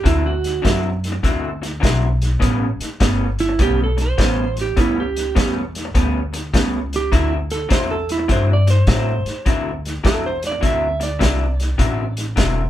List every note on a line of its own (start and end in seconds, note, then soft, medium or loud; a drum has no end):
0.04 0.63 D2 medium
0.04 0.30 D3 medium
0.04 0.30 F#3 medium
0.04 0.30 C4 medium
0.04 0.31 E4 medium
0.04 0.25 E4 medium
0.04 kick medium
0.04 snare soft
0.04 closed hi-hat medium
0.26 0.83 F#4 medium
0.44 snare soft
0.44 closed hi-hat medium
0.62 1.22 F#2 medium
0.62 0.88 D3 medium
0.62 0.89 F#3 medium
0.62 0.89 C4 medium
0.62 0.89 E4 medium
0.62 kick medium
0.62 snare loud
0.62 closed hi-hat medium
1.04 snare soft
1.04 closed hi-hat medium
1.12 muted clean electric guitar stroke soft
1.23 1.81 D2 medium
1.23 1.48 D3 medium
1.23 1.49 F#3 medium
1.23 1.49 C4 medium
1.23 1.49 E4 medium
1.23 kick medium
1.23 snare soft
1.23 closed hi-hat medium
1.62 muted clean electric guitar stroke soft
1.62 snare soft
1.62 closed hi-hat medium
1.80 2.40 B1 medium
1.80 2.06 D3 medium
1.80 2.07 F#3 medium
1.80 2.07 C4 medium
1.80 2.07 E4 medium
1.80 kick medium
1.80 closed hi-hat medium
1.85 snare loud
2.22 snare soft
2.22 closed hi-hat medium
2.40 2.78 A1 medium
2.40 2.66 A2 medium
2.40 2.66 G3 medium
2.40 2.66 B3 medium
2.40 2.66 C#4 loud
2.40 kick medium
2.40 snare soft
2.40 closed hi-hat medium
2.79 muted upright bass stroke soft
2.79 snare soft
2.79 closed hi-hat medium
3.00 3.58 G1 medium
3.00 3.25 A2 medium
3.00 3.26 G3 medium
3.00 3.26 B3 medium
3.00 3.26 C#4 medium
3.00 kick medium
3.00 snare loud
3.00 closed hi-hat medium
3.39 3.59 E4 medium
3.39 snare soft
3.39 closed hi-hat medium
3.49 muted clean electric guitar stroke medium
3.59 4.17 B1 medium
3.59 3.84 A2 medium
3.59 3.84 G3 medium
3.59 3.84 B3 medium
3.59 3.85 C#4 medium
3.59 3.80 G4 loud
3.59 kick medium
3.59 snare soft
3.59 closed hi-hat medium
3.84 4.00 A4 medium
3.97 muted clean electric guitar stroke soft
3.97 snare soft
3.97 closed hi-hat medium
4.02 4.57 C5 medium
4.18 4.75 A1 medium
4.18 4.43 A2 medium
4.18 4.43 G3 medium
4.18 4.44 B3 medium
4.18 4.44 C#4 medium
4.18 kick medium
4.18 snare loud
4.18 closed hi-hat medium
4.57 snare soft
4.57 closed hi-hat medium
4.61 4.78 G4 medium
4.76 5.34 C#2 medium
4.76 5.02 A2 medium
4.76 5.02 G3 medium
4.76 5.02 B3 medium
4.76 5.02 C#4 medium
4.76 4.98 E4 medium
4.76 kick medium
4.76 snare soft
4.76 closed hi-hat medium
5.00 5.55 G4 medium
5.16 snare soft
5.16 closed hi-hat medium
5.35 5.93 E2 medium
5.35 5.60 A2 medium
5.35 5.61 G3 medium
5.35 5.61 B3 medium
5.35 5.61 C#4 loud
5.35 kick medium
5.35 snare loud
5.35 closed hi-hat medium
5.75 snare soft
5.75 closed hi-hat medium
5.85 muted clean electric guitar stroke medium
5.95 6.52 D2 medium
5.95 6.19 A2 medium
5.95 6.19 G3 medium
5.95 6.20 B3 medium
5.95 6.20 C#4 medium
5.95 kick medium
5.95 snare soft
5.95 closed hi-hat medium
6.33 muted clean electric guitar stroke soft
6.33 snare soft
6.33 closed hi-hat medium
6.54 7.10 C#2 medium
6.54 6.78 A2 medium
6.54 6.78 G3 medium
6.54 6.78 B3 medium
6.54 6.79 C#4 medium
6.54 kick medium
6.54 snare loud
6.54 closed hi-hat medium
6.93 7.13 G4 medium
6.93 snare soft
6.93 closed hi-hat medium
7.12 7.69 D2 medium
7.12 7.36 D3 medium
7.12 7.36 F#3 medium
7.12 7.37 C4 medium
7.12 7.37 E4 medium
7.12 7.32 E4 medium
7.12 kick medium
7.12 snare soft
7.12 closed hi-hat medium
7.50 7.70 A4 medium
7.50 snare soft
7.50 closed hi-hat medium
7.69 8.27 E2 medium
7.69 7.94 D3 medium
7.69 7.94 F#3 medium
7.69 7.95 C4 medium
7.69 7.95 E4 medium
7.69 7.90 C5 medium
7.69 kick medium
7.69 snare loud
7.69 closed hi-hat medium
7.91 8.09 A4 medium
8.09 8.29 E4 medium
8.09 snare soft
8.09 closed hi-hat medium
8.18 muted clean electric guitar stroke soft
8.28 8.85 G2 medium
8.28 8.53 D3 medium
8.28 8.53 F#3 medium
8.28 8.54 C4 medium
8.28 8.54 E4 medium
8.28 8.49 C5 medium
8.28 kick medium
8.28 snare soft
8.28 closed hi-hat medium
8.53 8.69 D5 medium
8.67 8.88 C5 medium
8.67 muted clean electric guitar stroke soft
8.67 snare soft
8.67 closed hi-hat medium
8.87 9.22 A2 medium
8.87 9.12 D3 medium
8.87 9.12 F#3 medium
8.87 9.12 C4 medium
8.87 9.13 E4 medium
8.87 9.45 C5 loud
8.87 kick medium
8.87 snare loud
8.87 closed hi-hat medium
9.25 muted upright bass stroke soft
9.25 snare soft
9.25 closed hi-hat medium
9.46 10.02 D2 medium
9.46 9.70 D3 medium
9.46 9.70 F#3 medium
9.46 9.71 C4 medium
9.46 9.71 E4 medium
9.46 kick medium
9.46 snare soft
9.46 closed hi-hat medium
9.85 snare soft
9.85 closed hi-hat medium
10.04 10.60 E2 medium
10.04 10.28 D3 medium
10.04 10.28 F#3 medium
10.04 10.29 C4 medium
10.04 10.29 E4 medium
10.04 10.24 A4 medium
10.04 kick medium
10.04 snare loud
10.04 closed hi-hat medium
10.26 10.43 C5 medium
10.43 snare soft
10.43 closed hi-hat medium
10.47 10.63 D5 medium
10.51 muted clean electric guitar stroke soft
10.61 11.19 D2 medium
10.61 10.86 D3 medium
10.61 10.87 F#3 medium
10.61 10.87 C4 medium
10.61 10.87 E4 medium
10.61 kick medium
10.61 snare soft
10.61 closed hi-hat medium
10.66 11.02 E5 medium
11.00 12.15 D5 medium
11.00 muted clean electric guitar stroke medium
11.00 snare soft
11.00 closed hi-hat medium
11.19 11.77 C2 medium
11.19 11.44 D3 medium
11.19 11.45 F#3 medium
11.19 11.45 C4 medium
11.19 11.45 E4 medium
11.19 kick medium
11.19 snare loud
11.19 closed hi-hat medium
11.60 snare soft
11.60 closed hi-hat medium
11.78 12.35 A1 medium
11.78 12.03 D3 medium
11.78 12.03 F#3 medium
11.78 12.04 C4 medium
11.78 12.04 E4 medium
11.78 kick medium
11.78 snare soft
11.78 closed hi-hat medium
12.17 snare soft
12.17 closed hi-hat medium
12.36 12.70 E1 medium
12.36 12.61 D3 medium
12.36 12.62 F#3 medium
12.36 12.62 C4 loud
12.36 12.62 E4 medium
12.36 kick medium
12.36 snare loud
12.36 closed hi-hat medium